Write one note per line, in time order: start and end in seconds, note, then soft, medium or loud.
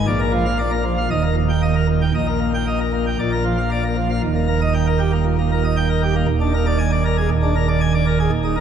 0.07 1.07 A#1 medium
0.07 1.07 A#2 medium
0.07 0.19 D5 medium
0.20 0.32 A#4 medium
0.33 0.45 F3 medium
0.46 0.57 F5 medium
0.59 0.71 A#3 medium
0.59 0.70 D5 medium
0.71 0.83 A#4 medium
0.84 0.96 F3 medium
0.98 1.08 F5 medium
1.10 2.11 D#1 medium
1.10 2.11 D#2 medium
1.10 1.22 D#5 medium
1.23 1.35 A#4 medium
1.36 1.48 A#2 medium
1.49 1.61 G5 medium
1.62 1.74 A#3 medium
1.62 1.74 D#5 medium
1.75 1.87 A#4 medium
1.88 2.00 A#2 medium
2.01 2.12 G5 medium
2.14 3.16 A#1 medium
2.14 3.16 A#2 medium
2.14 2.26 D#5 medium
2.27 2.39 A#4 medium
2.41 2.52 A#3 medium
2.54 2.65 G5 medium
2.67 2.78 A#3 medium
2.67 2.79 D#5 medium
2.80 2.92 A#4 medium
2.93 3.05 A#3 medium
3.06 3.17 G5 medium
3.19 4.20 A#1 medium
3.19 4.20 A#2 medium
3.19 3.31 D5 medium
3.32 3.44 A#4 medium
3.45 3.56 F3 medium
3.58 3.70 F5 medium
3.71 3.83 A#3 medium
3.71 3.83 D5 medium
3.84 3.96 A#4 medium
3.97 4.09 F3 medium
4.10 4.21 F5 medium
4.23 6.24 D#1 medium
4.23 6.24 D#2 medium
4.35 4.47 A#3 medium
4.48 4.60 A#4 medium
4.61 4.73 D#5 medium
4.74 4.86 G5 loud
4.87 4.99 A#4 medium
4.99 5.11 G4 medium
5.12 5.24 A#3 medium
5.26 5.37 A#2 medium
5.38 5.50 A#3 medium
5.52 5.63 A#4 medium
5.64 5.76 D#5 medium
5.77 5.88 G5 medium
5.90 6.01 A#4 medium
6.03 6.14 G4 medium
6.15 6.26 A#3 medium
6.28 7.29 D#1 medium
6.28 7.29 D#2 loud
6.41 6.52 D4 medium
6.54 6.65 A#4 medium
6.66 6.78 D5 medium
6.79 6.90 G#5 loud
6.92 7.03 D5 medium
7.05 7.16 A#4 medium
7.18 7.29 G#4 medium
7.31 8.29 D#1 medium
7.31 8.29 D#2 medium
7.43 7.54 D4 medium
7.56 7.67 A#4 medium
7.68 7.80 D5 medium
7.81 7.92 G#5 medium
7.94 8.05 D5 medium
8.07 8.18 A#4 medium
8.20 8.30 G#4 medium
8.32 8.60 D#1 medium
8.32 8.60 D#2 medium
8.44 8.55 D#4 medium
8.57 8.60 A#4 medium